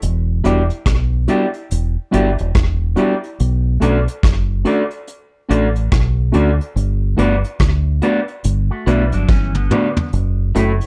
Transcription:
0.02 fingered electric bass E1, closed hi-hat
0.44 fingered electric bass E1, tine electric piano G3 B3 D4 F#4, clean electric guitar E4 G4 D5, closed hi-hat
0.70 closed hi-hat
0.86 fingered electric bass B1, kick, cross-stick, closed hi-hat
1.28 tine electric piano G3 B3 D4 F#4, clean electric guitar E4 G4 D5, closed hi-hat
1.54 closed hi-hat
1.71 fingered electric bass E1, closed hi-hat
2.11 fingered electric bass G1, tine electric piano G3 B3 D4 F#4, clean electric guitar E4 G4 D5, closed hi-hat
2.38 fingered electric bass E1, closed hi-hat
2.55 fingered electric bass E1, kick, cross-stick, closed hi-hat
2.96 tine electric piano G3 B3 D4 F#4, clean electric guitar E4 G4 D5, closed hi-hat
3.24 closed hi-hat
3.40 fingered electric bass B1, closed hi-hat
3.80 fingered electric bass B1, tine electric piano A3 C#4 D4 F#4, clean electric guitar F#4 A4 D5, closed hi-hat
4.08 closed hi-hat
4.23 fingered electric bass F#1, kick, cross-stick, closed hi-hat
4.64 tine electric piano A3 C#4 D4 F#4, clean electric guitar F#4 A4 D5, closed hi-hat
4.91 closed hi-hat
5.07 closed hi-hat
5.49 fingered electric bass A1, tine electric piano A3 C#4 D4 F#4, clean electric guitar F#4 A4 D5, closed hi-hat
5.75 closed hi-hat
5.92 fingered electric bass B1, kick, cross-stick, closed hi-hat
6.32 fingered electric bass D2, tine electric piano A3 C#4 D4 F#4, clean electric guitar F#4 A4 D5, closed hi-hat
6.61 closed hi-hat
6.76 fingered electric bass G1, closed hi-hat
7.17 fingered electric bass G1, tine electric piano A3 B3 D4 F#4, clean electric guitar F#4 B4 D5, closed hi-hat
7.44 closed hi-hat
7.59 fingered electric bass D2, kick, cross-stick, closed hi-hat
8.02 tine electric piano A3 B3 D4 F#4, clean electric guitar F#4 B4 D5, closed hi-hat
8.28 closed hi-hat
8.44 fingered electric bass G1, closed hi-hat
8.71 clean electric guitar A3 F#4
8.86 fingered electric bass B1, clean electric guitar G3 E4 F#4 B4 D5, tine electric piano A3 B3 D4 F#4, closed hi-hat
9.12 fingered electric bass G1, clean electric guitar F#3 D4, closed hi-hat
9.29 fingered electric bass G1, clean electric guitar E3 C#4, kick, high tom
9.55 clean electric guitar D3 B3, mid tom
9.71 tine electric piano A3 B3 D4 F#4, clean electric guitar F#4 B4 D5, mid tom
9.97 floor tom
10.13 fingered electric bass F#1, closed hi-hat
10.55 fingered electric bass F#1, tine electric piano A3 C#4 E4 F#4, clean electric guitar E4 A4 C#5, closed hi-hat
10.81 closed hi-hat

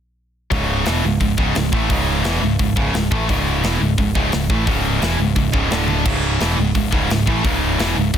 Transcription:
0.51 picked electric bass C#1, distorted electric guitar C#2 G#2 C#3, kick, open hi-hat
0.85 picked electric bass E1, distorted electric guitar E2 B2 E3, snare, open hi-hat
1.03 picked electric bass C#1, distorted electric guitar C#2 G#2
1.20 picked electric bass C#1, distorted electric guitar C#2 G#2, kick, open hi-hat
1.37 picked electric bass C#1, distorted electric guitar C#2 G#2 C#3, kick
1.55 picked electric bass C#1, distorted electric guitar C#2 G#2, snare, open hi-hat
1.72 picked electric bass A1, distorted electric guitar A2 E3 A3, kick
1.90 picked electric bass C#1, distorted electric guitar C#2 G#2 C#3, kick, open hi-hat
2.24 picked electric bass E1, distorted electric guitar E2 B2 E3, snare, open hi-hat
2.42 picked electric bass C#1, distorted electric guitar C#2 G#2
2.59 picked electric bass C#1, distorted electric guitar C#2 G#2, kick, open hi-hat
2.76 picked electric bass C#1, distorted electric guitar C#2 G#2 C#3, kick
2.94 picked electric bass C#1, distorted electric guitar C#2 G#2, snare, open hi-hat
3.11 picked electric bass A1, distorted electric guitar A2 E3 A3, kick
3.28 picked electric bass C#1, distorted electric guitar C#2 G#2 C#3, kick, open hi-hat
3.63 picked electric bass E1, distorted electric guitar E2 B2 E3, snare, open hi-hat
3.80 picked electric bass C#1, distorted electric guitar C#2 G#2
3.98 picked electric bass C#1, distorted electric guitar C#2 G#2, kick, open hi-hat
4.15 picked electric bass C#1, distorted electric guitar C#2 G#2 C#3, kick
4.32 picked electric bass C#1, distorted electric guitar C#2 G#2, snare, open hi-hat
4.50 picked electric bass A1, distorted electric guitar A2 E3 A3, kick
4.66 picked electric bass C#1, distorted electric guitar C#2 G#2 C#3, kick, open hi-hat
5.01 picked electric bass E1, distorted electric guitar E2 B2 E3, snare, open hi-hat
5.19 picked electric bass C#1, distorted electric guitar C#2 G#2
5.36 picked electric bass C#1, distorted electric guitar C#2 G#2, kick, open hi-hat
5.53 picked electric bass C#1, distorted electric guitar C#2 G#2 C#3, kick
5.71 picked electric bass D1, distorted electric guitar D2 A2 D3, snare, open hi-hat
5.88 high tom
6.05 picked electric bass C#1, distorted electric guitar C#2 G#2 C#3, kick, crash
6.40 picked electric bass E1, distorted electric guitar E2 B2 E3, snare, open hi-hat
6.57 picked electric bass C#1, distorted electric guitar C#2 G#2
6.75 picked electric bass C#1, distorted electric guitar C#2 G#2, kick, open hi-hat
6.91 picked electric bass C#1, distorted electric guitar C#2 G#2 C#3, kick
7.09 picked electric bass C#1, distorted electric guitar C#2 G#2, snare, open hi-hat
7.26 picked electric bass A1, distorted electric guitar A2 E3 A3, kick
7.42 picked electric bass C#1, distorted electric guitar C#2 G#2 C#3, kick, open hi-hat
7.78 picked electric bass E1, distorted electric guitar E2 B2 E3, snare, open hi-hat
7.96 picked electric bass C#1, distorted electric guitar C#2 G#2
8.14 picked electric bass C#1, distorted electric guitar C#2 G#2, kick, open hi-hat

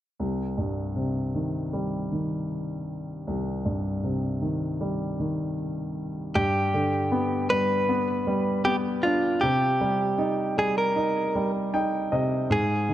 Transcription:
0.20 grand piano C2
0.58 grand piano G2
0.96 grand piano C3
1.35 grand piano D#3
1.73 grand piano G3
2.12 grand piano D#3
3.27 grand piano C2
3.65 grand piano G2
4.04 grand piano C3
4.42 grand piano D#3
4.81 grand piano G3
5.20 grand piano D#3
6.35 grand piano G2, clean electric guitar G4
6.74 grand piano D3
7.11 grand piano B3
7.50 grand piano G3, clean electric guitar B4
7.89 grand piano B3
8.27 grand piano G3
8.65 grand piano B3, clean electric guitar G4
9.03 grand piano D4, clean electric guitar F4
9.41 grand piano C3, clean electric guitar G4
9.81 grand piano G3
10.18 grand piano D#4
10.58 grand piano G3, clean electric guitar G#4
10.78 clean electric guitar A#4
10.96 grand piano D#4
11.35 grand piano G3
11.74 grand piano D#4 G5
12.12 grand piano C3 D#5
12.50 grand piano G#2, clean electric guitar G#4
12.89 grand piano D#3

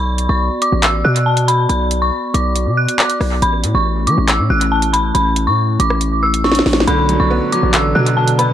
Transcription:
Already playing: 808-style bass B1, glass harmonica B3 F#4 D5, synth bell B5
0.18 closed hi-hat
0.29 808-style bass B1, synth bell C#6
0.62 synth bell D6, closed hi-hat
0.72 808-style bass A1
0.83 synth bell E6, clap, closed hi-hat
1.04 808-style bass B2, synth bell F#6
1.16 closed hi-hat
1.26 synth bell A5
1.37 closed hi-hat
1.48 synth bell B5, closed hi-hat
1.69 808-style bass B1, synth bell B5, closed hi-hat
1.91 closed hi-hat
2.02 synth bell C#6
2.34 808-style bass B1, synth bell D6, closed hi-hat
2.56 closed hi-hat
2.67 808-style bass B2
2.77 synth bell F#6
2.89 closed hi-hat
2.99 synth bell D6, clap
3.10 closed hi-hat
3.21 808-style bass B1, cross-stick, open hi-hat
3.42 808-style bass A1, glass harmonica A3 C#4 E4, synth bell B5, closed hi-hat
3.64 808-style bass A2, closed hi-hat
3.75 808-style bass A1, synth bell C#6
4.07 808-style bass E3, synth bell D6, closed hi-hat
4.18 808-style bass A1
4.28 synth bell E6, clap, closed hi-hat
4.39 808-style bass A2
4.50 808-style bass A1, synth bell F#6
4.61 closed hi-hat
4.72 synth bell A5
4.82 closed hi-hat
4.93 synth bell B5, closed hi-hat
5.15 808-style bass A1, synth bell B5, closed hi-hat
5.36 closed hi-hat
5.47 808-style bass A2, synth bell C#6
5.80 808-style bass A1, synth bell D6, closed hi-hat
5.90 cross-stick
6.01 closed hi-hat
6.23 synth bell E6
6.34 closed hi-hat
6.44 synth bell C#6, snare
6.52 snare, closed hi-hat
6.59 snare
6.66 808-style bass A1, snare, open hi-hat
6.73 snare
6.80 snare
6.87 808-style bass B1, grand piano D3, glass harmonica B3 F#4 D5, synth bell B5, closed hi-hat
7.09 grand piano F#3, closed hi-hat
7.20 808-style bass B1, synth bell C#6
7.31 grand piano B3
7.52 grand piano F#3, synth bell D6, closed hi-hat
7.63 808-style bass A1
7.74 grand piano D3, synth bell E6, clap, closed hi-hat
7.95 808-style bass B2, grand piano F#3, synth bell F#6
8.06 closed hi-hat
8.17 grand piano D3, synth bell A5
8.28 closed hi-hat
8.39 grand piano B3, synth bell B5, closed hi-hat

